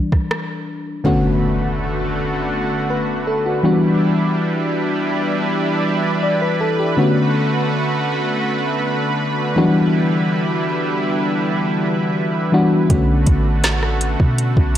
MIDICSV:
0, 0, Header, 1, 6, 480
1, 0, Start_track
1, 0, Key_signature, 2, "minor"
1, 0, Tempo, 740741
1, 680, Time_signature, 4, 2, 24, 8
1, 9577, End_track
2, 0, Start_track
2, 0, Title_t, "FM electric piano"
2, 0, Program_c, 0, 5
2, 0, Control_c, 0, 64, 127
2, 0, Note_on_c, 0, 52, 47
2, 0, Note_on_c, 0, 55, 42
2, 0, Note_on_c, 0, 62, 52
2, 674, Note_on_c, 0, 50, 90
2, 677, Note_on_c, 0, 57, 81
2, 680, Note_on_c, 0, 59, 84
2, 682, Note_on_c, 0, 61, 80
2, 686, Note_on_c, 0, 66, 99
2, 688, Control_c, 0, 64, 0
2, 689, Note_off_c, 0, 62, 0
2, 693, Note_off_c, 0, 52, 0
2, 693, Note_off_c, 0, 55, 0
2, 799, Control_c, 0, 64, 127
2, 1485, Note_off_c, 0, 50, 0
2, 1486, Note_off_c, 0, 57, 0
2, 1488, Note_off_c, 0, 59, 0
2, 1489, Note_off_c, 0, 61, 0
2, 1490, Note_off_c, 0, 66, 0
2, 1880, Note_on_c, 0, 71, 66
2, 2108, Note_off_c, 0, 71, 0
2, 2121, Note_on_c, 0, 69, 80
2, 2234, Note_off_c, 0, 69, 0
2, 2242, Note_on_c, 0, 66, 72
2, 2354, Note_on_c, 0, 52, 97
2, 2358, Note_on_c, 0, 55, 88
2, 2359, Note_off_c, 0, 66, 0
2, 2361, Note_on_c, 0, 59, 92
2, 2363, Note_on_c, 0, 62, 89
2, 2367, Note_on_c, 0, 66, 104
2, 2368, Control_c, 0, 64, 0
2, 2466, Control_c, 0, 64, 127
2, 3164, Note_off_c, 0, 52, 0
2, 3167, Note_off_c, 0, 55, 0
2, 3168, Note_off_c, 0, 59, 0
2, 3169, Note_off_c, 0, 62, 0
2, 3171, Note_off_c, 0, 66, 0
2, 4037, Note_on_c, 0, 74, 72
2, 4152, Note_off_c, 0, 74, 0
2, 4158, Note_on_c, 0, 71, 75
2, 4273, Note_off_c, 0, 71, 0
2, 4282, Note_on_c, 0, 69, 80
2, 4395, Note_off_c, 0, 69, 0
2, 4403, Note_on_c, 0, 67, 71
2, 4516, Note_on_c, 0, 50, 88
2, 4519, Note_on_c, 0, 57, 82
2, 4522, Note_on_c, 0, 59, 84
2, 4525, Note_on_c, 0, 61, 83
2, 4528, Control_c, 0, 64, 0
2, 4528, Note_on_c, 0, 66, 94
2, 4630, Note_off_c, 0, 67, 0
2, 4640, Control_c, 0, 64, 127
2, 5326, Note_off_c, 0, 50, 0
2, 5327, Note_off_c, 0, 57, 0
2, 5329, Note_off_c, 0, 59, 0
2, 5330, Note_off_c, 0, 61, 0
2, 5332, Note_off_c, 0, 66, 0
2, 6195, Note_on_c, 0, 52, 102
2, 6198, Note_on_c, 0, 54, 71
2, 6203, Note_on_c, 0, 59, 93
2, 6206, Note_on_c, 0, 62, 92
2, 6208, Note_on_c, 0, 66, 108
2, 6209, Control_c, 0, 64, 0
2, 6241, Note_off_c, 0, 54, 0
2, 6241, Note_on_c, 0, 55, 86
2, 6331, Control_c, 0, 64, 127
2, 7005, Note_off_c, 0, 52, 0
2, 7009, Note_off_c, 0, 59, 0
2, 7010, Note_off_c, 0, 62, 0
2, 7011, Note_off_c, 0, 66, 0
2, 7028, Note_off_c, 0, 55, 0
2, 8114, Note_on_c, 0, 52, 93
2, 8118, Note_on_c, 0, 55, 88
2, 8121, Note_on_c, 0, 59, 82
2, 8124, Note_on_c, 0, 62, 86
2, 8127, Note_on_c, 0, 66, 104
2, 8319, Note_off_c, 0, 52, 0
2, 8321, Note_off_c, 0, 55, 0
2, 8322, Note_off_c, 0, 59, 0
2, 8324, Note_off_c, 0, 62, 0
2, 8325, Note_off_c, 0, 66, 0
2, 8355, Note_on_c, 0, 50, 94
2, 8357, Note_on_c, 0, 57, 83
2, 8361, Note_on_c, 0, 59, 81
2, 8364, Note_on_c, 0, 61, 79
2, 8368, Note_on_c, 0, 66, 94
2, 8369, Control_c, 0, 64, 0
2, 8463, Control_c, 0, 64, 127
2, 9165, Note_off_c, 0, 50, 0
2, 9166, Note_off_c, 0, 57, 0
2, 9168, Note_off_c, 0, 59, 0
2, 9170, Note_off_c, 0, 61, 0
2, 9172, Note_off_c, 0, 66, 0
2, 9577, End_track
3, 0, Start_track
3, 0, Title_t, "Analog synth pad"
3, 0, Program_c, 1, 89
3, 677, Note_on_c, 1, 50, 81
3, 678, Note_on_c, 1, 57, 87
3, 678, Note_on_c, 1, 66, 75
3, 678, Note_on_c, 1, 71, 97
3, 2342, Note_off_c, 1, 50, 0
3, 2342, Note_off_c, 1, 57, 0
3, 2342, Note_off_c, 1, 66, 0
3, 2362, Note_on_c, 1, 55, 85
3, 2362, Note_on_c, 1, 62, 83
3, 2362, Note_on_c, 1, 64, 76
3, 4499, Note_off_c, 1, 55, 0
3, 4499, Note_off_c, 1, 62, 0
3, 4500, Note_off_c, 1, 64, 0
3, 4519, Note_on_c, 1, 57, 84
3, 4519, Note_on_c, 1, 66, 82
3, 4520, Note_on_c, 1, 50, 79
3, 6182, Note_off_c, 1, 57, 0
3, 6183, Note_off_c, 1, 66, 0
3, 6202, Note_on_c, 1, 55, 84
3, 6203, Note_on_c, 1, 64, 74
3, 8334, Note_off_c, 1, 50, 0
3, 8339, Note_off_c, 1, 55, 0
3, 8339, Note_off_c, 1, 64, 0
3, 8360, Note_on_c, 1, 57, 84
3, 8360, Note_on_c, 1, 66, 76
3, 8361, Note_on_c, 1, 50, 81
3, 9577, Note_off_c, 1, 50, 0
3, 9577, Note_off_c, 1, 57, 0
3, 9577, Note_off_c, 1, 66, 0
3, 9577, Note_off_c, 1, 71, 0
3, 9577, End_track
4, 0, Start_track
4, 0, Title_t, "808-style bass"
4, 0, Program_c, 2, 38
4, 8361, Note_on_c, 2, 35, 117
4, 8591, Note_off_c, 2, 35, 0
4, 8602, Note_on_c, 2, 33, 105
4, 9177, Note_off_c, 2, 33, 0
4, 9201, Note_on_c, 2, 47, 111
4, 9431, Note_off_c, 2, 47, 0
4, 9442, Note_on_c, 2, 35, 99
4, 9577, Note_off_c, 2, 35, 0
4, 9577, End_track
5, 0, Start_track
5, 0, Title_t, "Impact"
5, 0, Program_c, 3, 103
5, 679, Note_on_c, 3, 60, 87
5, 2600, Note_off_c, 3, 60, 0
5, 9577, End_track
6, 0, Start_track
6, 0, Title_t, "Drums"
6, 79, Note_on_c, 9, 36, 86
6, 81, Note_on_c, 9, 37, 60
6, 144, Note_off_c, 9, 36, 0
6, 145, Note_off_c, 9, 37, 0
6, 201, Note_on_c, 9, 37, 106
6, 265, Note_off_c, 9, 37, 0
6, 8359, Note_on_c, 9, 42, 63
6, 8360, Note_on_c, 9, 36, 119
6, 8424, Note_off_c, 9, 36, 0
6, 8424, Note_off_c, 9, 42, 0
6, 8596, Note_on_c, 9, 42, 75
6, 8599, Note_on_c, 9, 36, 96
6, 8661, Note_off_c, 9, 42, 0
6, 8664, Note_off_c, 9, 36, 0
6, 8836, Note_on_c, 9, 42, 86
6, 8839, Note_on_c, 9, 38, 110
6, 8901, Note_off_c, 9, 42, 0
6, 8904, Note_off_c, 9, 38, 0
6, 8960, Note_on_c, 9, 37, 70
6, 9025, Note_off_c, 9, 37, 0
6, 9078, Note_on_c, 9, 42, 75
6, 9143, Note_off_c, 9, 42, 0
6, 9200, Note_on_c, 9, 36, 92
6, 9265, Note_off_c, 9, 36, 0
6, 9321, Note_on_c, 9, 42, 77
6, 9386, Note_off_c, 9, 42, 0
6, 9440, Note_on_c, 9, 36, 103
6, 9505, Note_off_c, 9, 36, 0
6, 9577, End_track
0, 0, End_of_file